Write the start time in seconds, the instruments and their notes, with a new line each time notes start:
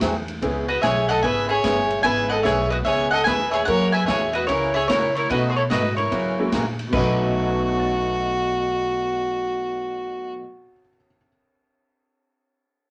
0.01 upright bass E2, steel-string acoustic guitar E3 F#3 C4 E4 G#4, kick, snare, hi-hat pedal, ride
0.28 ride
0.42 upright bass C#2, steel-string acoustic guitar C#3 E3 B3 C#4 G#4, honky-tonk piano G#3 B3 C#4 E4 G#4, kick, ride
0.68 mandolin F#4 D#5, fiddle B4
0.82 upright bass B1, steel-string acoustic guitar C#3 E3 B3 C#4 G#4, mandolin G#4 E5, fiddle C#5, kick, snare, hi-hat pedal, ride
1.09 mandolin A4 F#5, fiddle D#5, ride
1.22 upright bass G#1, steel-string acoustic guitar C#3 E3 B3 C#4 G#4, mandolin B4 G#5, fiddle E5, kick
1.49 mandolin G#4 E5, fiddle C#5
1.63 upright bass G1, steel-string acoustic guitar C#3 E3 B3 C#4 G#4, honky-tonk piano G#3 B3 C#4 E4 G#4, kick, snare, hi-hat pedal, ride
1.90 ride
2.03 upright bass G#1, steel-string acoustic guitar C#3 E3 B3 C#4 G#4, honky-tonk piano G#3 B3 C#4 E4 G#4, mandolin B4 G#5, fiddle E5, kick, ride
2.29 mandolin A4 F#5, fiddle D#5
2.43 upright bass B1, steel-string acoustic guitar C#3 E3 B3 C#4 G#4, mandolin G#4 E5, fiddle C#5, kick, snare, hi-hat pedal, ride
2.70 mandolin F#4 D#5, fiddle B4, ride
2.83 upright bass C#2, steel-string acoustic guitar C#3 E3 B3 C#4 G#4, mandolin G#4 E5, fiddle C#5, kick, ride
3.11 mandolin A4 F#5, fiddle D#5
3.24 upright bass D#2, steel-string acoustic guitar C#3 E3 B3 C#4 G#4, mandolin B4 G#5, fiddle E5, kick, snare, hi-hat pedal, ride
3.51 mandolin G#4 E5, fiddle C#5, ride
3.65 upright bass F#2, steel-string acoustic guitar C#3 E3 A#3 C#4 F#4, honky-tonk piano G#3 A#3 C#4 E4 F#4, mandolin A#4 F#5, fiddle C#5, kick, ride
3.92 mandolin B4 G#5, fiddle E5
4.06 upright bass E2, steel-string acoustic guitar C#3 E3 A#3 C#4 F#4, mandolin G#4 E5, fiddle C#5, kick, snare, hi-hat pedal, ride
4.33 mandolin F#4 D#5, fiddle B4, ride
4.47 upright bass C#2, steel-string acoustic guitar C#3 E3 A#3 C#4 F#4, mandolin E4 C#5, fiddle A#4, kick, ride
4.74 mandolin G#4 E5, fiddle C#5
4.88 steel-string acoustic guitar C#3 E3 A#3 C#4 F#4, upright bass C#3, mandolin E4 C#5, fiddle A#4, kick, snare, hi-hat pedal, ride
5.15 mandolin E4 C#5, fiddle A#4, ride
5.29 steel-string acoustic guitar B2 F#3 A3 D#4 F#4, upright bass B2, honky-tonk piano A3 B3 C#4 D#4 F#4, mandolin F#4 D#5, fiddle B4, kick, ride
5.49 fiddle G#4, mandolin C5
5.56 mandolin E4 C#5, fiddle A4
5.70 upright bass G#2, steel-string acoustic guitar B2 F#3 A3 D#4 F#4, mandolin F#4 D#5, fiddle B4, kick, snare, hi-hat pedal, ride
5.96 mandolin E4 C#5, fiddle A#4, ride
6.11 upright bass F#2, steel-string acoustic guitar C#3 E3 A#3 C#4 F#4, kick, ride
6.39 honky-tonk piano G#3 A#3 C#4 E4 F#4
6.52 upright bass A#2, steel-string acoustic guitar C#3 E3 A#3 C#4 F#4, kick, snare, hi-hat pedal, ride
6.79 ride
6.87 honky-tonk piano B2 B3
6.92 upright bass B1, steel-string acoustic guitar B2 F#3 A3 D#4 F#4, honky-tonk piano C#4, fiddle F#4, mandolin B4, kick, china
6.97 honky-tonk piano D#4 A4
7.34 honky-tonk piano C#5
7.41 honky-tonk piano F#5
7.50 honky-tonk piano A5
7.59 honky-tonk piano C#6
7.69 honky-tonk piano F#6
7.80 honky-tonk piano A6
7.91 honky-tonk piano C#7